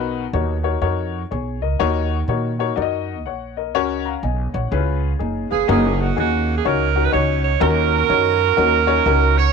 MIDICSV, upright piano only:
0, 0, Header, 1, 2, 480
1, 0, Start_track
1, 0, Tempo, 484262
1, 1781, Time_signature, 4, 2, 24, 8
1, 9443, End_track
2, 0, Start_track
2, 0, Title_t, "Upright piano"
2, 0, Program_c, 0, 0
2, 0, Note_on_c, 0, 47, 63
2, 0, Note_on_c, 0, 63, 99
2, 0, Note_on_c, 0, 66, 91
2, 0, Note_on_c, 0, 70, 89
2, 0, Note_on_c, 0, 71, 98
2, 235, Note_off_c, 0, 63, 0
2, 236, Note_off_c, 0, 66, 0
2, 237, Note_off_c, 0, 70, 0
2, 237, Note_off_c, 0, 71, 0
2, 333, Note_on_c, 0, 73, 73
2, 334, Note_on_c, 0, 70, 58
2, 336, Note_on_c, 0, 63, 65
2, 339, Note_on_c, 0, 66, 62
2, 551, Note_off_c, 0, 73, 0
2, 552, Note_off_c, 0, 70, 0
2, 553, Note_off_c, 0, 63, 0
2, 554, Note_off_c, 0, 66, 0
2, 605, Note_off_c, 0, 47, 0
2, 627, Note_on_c, 0, 63, 63
2, 633, Note_on_c, 0, 66, 66
2, 634, Note_on_c, 0, 70, 70
2, 636, Note_on_c, 0, 73, 75
2, 759, Note_off_c, 0, 63, 0
2, 762, Note_off_c, 0, 66, 0
2, 762, Note_off_c, 0, 70, 0
2, 763, Note_off_c, 0, 73, 0
2, 809, Note_on_c, 0, 66, 68
2, 809, Note_on_c, 0, 70, 71
2, 809, Note_on_c, 0, 73, 86
2, 810, Note_on_c, 0, 63, 77
2, 1193, Note_off_c, 0, 66, 0
2, 1193, Note_off_c, 0, 70, 0
2, 1193, Note_off_c, 0, 73, 0
2, 1194, Note_off_c, 0, 63, 0
2, 1298, Note_on_c, 0, 73, 56
2, 1304, Note_on_c, 0, 68, 49
2, 1590, Note_off_c, 0, 73, 0
2, 1593, Note_off_c, 0, 68, 0
2, 1606, Note_on_c, 0, 75, 64
2, 1610, Note_on_c, 0, 70, 47
2, 1768, Note_off_c, 0, 70, 0
2, 1778, Note_on_c, 0, 66, 88
2, 1781, Note_on_c, 0, 73, 108
2, 1782, Note_on_c, 0, 63, 98
2, 1783, Note_on_c, 0, 51, 64
2, 1783, Note_on_c, 0, 70, 88
2, 2063, Note_off_c, 0, 75, 0
2, 2160, Note_off_c, 0, 66, 0
2, 2161, Note_off_c, 0, 73, 0
2, 2162, Note_off_c, 0, 63, 0
2, 2162, Note_off_c, 0, 70, 0
2, 2267, Note_on_c, 0, 63, 62
2, 2268, Note_on_c, 0, 73, 73
2, 2270, Note_on_c, 0, 66, 64
2, 2270, Note_on_c, 0, 70, 65
2, 2483, Note_off_c, 0, 63, 0
2, 2483, Note_off_c, 0, 73, 0
2, 2484, Note_off_c, 0, 66, 0
2, 2484, Note_off_c, 0, 70, 0
2, 2531, Note_off_c, 0, 51, 0
2, 2570, Note_on_c, 0, 66, 64
2, 2577, Note_on_c, 0, 73, 84
2, 2578, Note_on_c, 0, 63, 66
2, 2578, Note_on_c, 0, 70, 58
2, 2694, Note_off_c, 0, 66, 0
2, 2698, Note_off_c, 0, 63, 0
2, 2698, Note_off_c, 0, 70, 0
2, 2698, Note_off_c, 0, 73, 0
2, 2733, Note_on_c, 0, 63, 78
2, 2736, Note_on_c, 0, 74, 72
2, 2738, Note_on_c, 0, 66, 74
2, 2744, Note_on_c, 0, 70, 69
2, 2795, Note_on_c, 0, 75, 82
2, 2814, Note_off_c, 0, 74, 0
2, 3119, Note_off_c, 0, 63, 0
2, 3121, Note_off_c, 0, 66, 0
2, 3125, Note_off_c, 0, 70, 0
2, 3150, Note_off_c, 0, 75, 0
2, 3227, Note_on_c, 0, 78, 61
2, 3239, Note_on_c, 0, 73, 53
2, 3518, Note_off_c, 0, 78, 0
2, 3524, Note_off_c, 0, 73, 0
2, 3539, Note_on_c, 0, 75, 56
2, 3545, Note_on_c, 0, 70, 53
2, 3698, Note_off_c, 0, 70, 0
2, 3713, Note_on_c, 0, 70, 82
2, 3715, Note_on_c, 0, 61, 99
2, 3715, Note_on_c, 0, 73, 110
2, 3716, Note_on_c, 0, 49, 63
2, 3718, Note_on_c, 0, 66, 92
2, 3993, Note_off_c, 0, 75, 0
2, 4018, Note_off_c, 0, 73, 0
2, 4020, Note_on_c, 0, 82, 57
2, 4030, Note_on_c, 0, 77, 51
2, 4090, Note_off_c, 0, 70, 0
2, 4091, Note_off_c, 0, 61, 0
2, 4093, Note_off_c, 0, 66, 0
2, 4184, Note_off_c, 0, 82, 0
2, 4189, Note_off_c, 0, 77, 0
2, 4193, Note_on_c, 0, 80, 50
2, 4203, Note_on_c, 0, 75, 46
2, 4459, Note_off_c, 0, 49, 0
2, 4482, Note_off_c, 0, 80, 0
2, 4487, Note_off_c, 0, 75, 0
2, 4497, Note_on_c, 0, 78, 58
2, 4505, Note_on_c, 0, 73, 49
2, 4672, Note_on_c, 0, 61, 75
2, 4675, Note_on_c, 0, 49, 70
2, 4678, Note_on_c, 0, 64, 53
2, 4678, Note_on_c, 0, 68, 69
2, 4680, Note_on_c, 0, 71, 83
2, 4729, Note_on_c, 0, 65, 67
2, 4747, Note_off_c, 0, 64, 0
2, 4953, Note_off_c, 0, 78, 0
2, 4957, Note_off_c, 0, 73, 0
2, 5050, Note_off_c, 0, 61, 0
2, 5053, Note_off_c, 0, 68, 0
2, 5054, Note_off_c, 0, 71, 0
2, 5079, Note_off_c, 0, 65, 0
2, 5147, Note_on_c, 0, 68, 58
2, 5152, Note_on_c, 0, 63, 51
2, 5418, Note_off_c, 0, 49, 0
2, 5439, Note_off_c, 0, 68, 0
2, 5441, Note_off_c, 0, 63, 0
2, 5458, Note_on_c, 0, 77, 61
2, 5460, Note_on_c, 0, 71, 48
2, 5629, Note_on_c, 0, 61, 91
2, 5631, Note_on_c, 0, 63, 88
2, 5633, Note_on_c, 0, 70, 99
2, 5635, Note_on_c, 0, 66, 80
2, 5912, Note_off_c, 0, 77, 0
2, 5913, Note_off_c, 0, 71, 0
2, 6008, Note_off_c, 0, 61, 0
2, 6009, Note_off_c, 0, 63, 0
2, 6010, Note_off_c, 0, 70, 0
2, 6011, Note_off_c, 0, 66, 0
2, 6106, Note_on_c, 0, 63, 58
2, 6107, Note_on_c, 0, 61, 55
2, 6111, Note_on_c, 0, 66, 53
2, 6111, Note_on_c, 0, 68, 70
2, 6486, Note_off_c, 0, 61, 0
2, 6486, Note_off_c, 0, 63, 0
2, 6488, Note_off_c, 0, 66, 0
2, 6488, Note_off_c, 0, 68, 0
2, 6592, Note_on_c, 0, 63, 64
2, 6594, Note_on_c, 0, 73, 78
2, 6597, Note_on_c, 0, 61, 70
2, 6597, Note_on_c, 0, 66, 70
2, 6806, Note_off_c, 0, 63, 0
2, 6807, Note_off_c, 0, 73, 0
2, 6808, Note_off_c, 0, 61, 0
2, 6808, Note_off_c, 0, 66, 0
2, 6895, Note_on_c, 0, 61, 64
2, 6895, Note_on_c, 0, 63, 55
2, 6896, Note_on_c, 0, 66, 64
2, 6896, Note_on_c, 0, 70, 74
2, 7017, Note_off_c, 0, 61, 0
2, 7017, Note_off_c, 0, 63, 0
2, 7018, Note_off_c, 0, 66, 0
2, 7018, Note_off_c, 0, 70, 0
2, 7053, Note_on_c, 0, 61, 70
2, 7057, Note_on_c, 0, 63, 66
2, 7062, Note_on_c, 0, 73, 79
2, 7063, Note_on_c, 0, 66, 64
2, 7437, Note_off_c, 0, 61, 0
2, 7439, Note_off_c, 0, 63, 0
2, 7441, Note_off_c, 0, 73, 0
2, 7442, Note_off_c, 0, 66, 0
2, 7535, Note_on_c, 0, 61, 89
2, 7536, Note_on_c, 0, 51, 60
2, 7536, Note_on_c, 0, 70, 98
2, 7537, Note_on_c, 0, 63, 84
2, 7540, Note_on_c, 0, 66, 84
2, 7916, Note_off_c, 0, 61, 0
2, 7917, Note_off_c, 0, 63, 0
2, 7917, Note_off_c, 0, 70, 0
2, 7919, Note_off_c, 0, 66, 0
2, 8023, Note_on_c, 0, 73, 69
2, 8025, Note_on_c, 0, 61, 56
2, 8025, Note_on_c, 0, 63, 53
2, 8026, Note_on_c, 0, 66, 57
2, 8282, Note_off_c, 0, 51, 0
2, 8399, Note_off_c, 0, 73, 0
2, 8400, Note_off_c, 0, 61, 0
2, 8400, Note_off_c, 0, 63, 0
2, 8401, Note_off_c, 0, 66, 0
2, 8493, Note_on_c, 0, 63, 77
2, 8494, Note_on_c, 0, 61, 81
2, 8495, Note_on_c, 0, 66, 86
2, 8495, Note_on_c, 0, 70, 104
2, 8712, Note_off_c, 0, 61, 0
2, 8712, Note_off_c, 0, 63, 0
2, 8713, Note_off_c, 0, 66, 0
2, 8713, Note_off_c, 0, 70, 0
2, 8792, Note_on_c, 0, 66, 71
2, 8794, Note_on_c, 0, 61, 80
2, 8795, Note_on_c, 0, 73, 93
2, 8796, Note_on_c, 0, 63, 69
2, 8921, Note_off_c, 0, 66, 0
2, 8922, Note_off_c, 0, 61, 0
2, 8922, Note_off_c, 0, 73, 0
2, 8923, Note_off_c, 0, 63, 0
2, 8980, Note_on_c, 0, 63, 73
2, 8982, Note_on_c, 0, 66, 81
2, 8984, Note_on_c, 0, 61, 90
2, 8984, Note_on_c, 0, 70, 103
2, 9355, Note_off_c, 0, 63, 0
2, 9356, Note_off_c, 0, 66, 0
2, 9357, Note_off_c, 0, 61, 0
2, 9357, Note_off_c, 0, 70, 0
2, 9443, End_track
0, 0, End_of_file